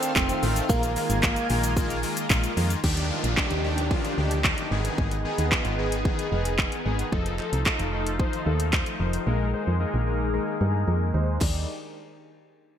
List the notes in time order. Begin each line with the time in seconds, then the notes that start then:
Already playing: D#3 A3 C4 D4 A4 F5
0.03 closed hi-hat, shaker
0.16 F1 D#3 A3 C4 F4, kick, clap, shaker
0.29 closed hi-hat, shaker
0.42 A1 D#3 A3 C4 F4, open hi-hat, shaker
0.56 closed hi-hat, shaker
0.69 A#1 D#3 G#3 A#3 F4 A#4 G#5, kick, shaker
0.83 closed hi-hat, shaker
0.96 D#3 G#3 A#3 F4, open hi-hat, shaker
1.10 G#1, closed hi-hat, shaker
1.23 D#3 G#3 A#3 F4, kick, clap, shaker
1.36 closed hi-hat, shaker
1.50 A#1 D#3 G#3 A#3 F4, open hi-hat, shaker
1.64 closed hi-hat, shaker
1.77 D#3 G#3 A#3 F4, kick, shaker
1.90 closed hi-hat, shaker
2.03 D#3 G#3 A#3 F4, open hi-hat, shaker
2.17 closed hi-hat, shaker
2.30 A#1 D#3 G#3 A#3 F4, kick, clap, shaker
2.44 closed hi-hat, shaker
2.57 F2 D#3 G#3 A#3 F4, open hi-hat, shaker
2.70 closed hi-hat, shaker
2.84 D#2 D#3 D4 D#4 G4, kick, crash, downlifter
2.97 closed hi-hat
3.10 D#3 D4 F4
3.24 A#1, closed hi-hat
3.37 D#3 D4 G4, kick, clap
3.50 D#2, closed hi-hat
3.64 D#3 D4 G4
3.78 closed hi-hat
3.91 D#3 D4 F4, kick
4.05 closed hi-hat
4.18 D2 D#3 D4 G4
4.31 closed hi-hat
4.44 D#3 D4 G4, kick, clap
4.58 closed hi-hat
4.71 G#1 D#3 B3 G#4
4.85 closed hi-hat
4.98 G#1, kick
5.11 closed hi-hat
5.25 D#3 B3 G#4
5.38 D#2, closed hi-hat
5.52 D#3 B3 F4, kick, clap
5.65 G#1, closed hi-hat
5.78 D#3 B3 G#4
5.92 closed hi-hat
6.05 D#3 B3 G#4, kick
6.19 closed hi-hat
6.32 F1 D#3 B3 G#4
6.45 closed hi-hat
6.59 D#3 B3 G#4, kick, clap
6.72 closed hi-hat
6.85 G#1 D#3 B3 G#4
6.99 closed hi-hat
7.12 F1 D#3 F3 A3 D#4 F4 A4, kick
7.26 closed hi-hat
7.39 F3 D#4 A4, clap
7.53 C2, closed hi-hat
7.66 F3 D#4 A4, kick, clap
7.79 F1, closed hi-hat
7.93 F3 D#4 A4
8.07 closed hi-hat
8.19 F3 D#4 C5, kick
8.33 closed hi-hat
8.46 D#2 F3 D#4 A4
8.60 closed hi-hat
8.73 F3 D#4 C5, kick, clap
8.86 closed hi-hat
9.00 F1 F3 D#4 C5
9.13 closed hi-hat
9.26 A#1 G#3 A#3 D#4 G#4 A#4
9.53 G#3 D#4 C5
9.67 F2
9.80 G#3 D#4 A#4
9.94 A#1
10.07 G#3 D#4 A#4
10.33 G#3 D#4 A#4
10.60 G2 G#3 D#4 A#4
10.87 F2 G#3 D#4 A#4
11.14 D#2 G#3 D#4 C5
11.41 D#2 D#3 G3 D4 D#4 G4 D5, kick, clap, crash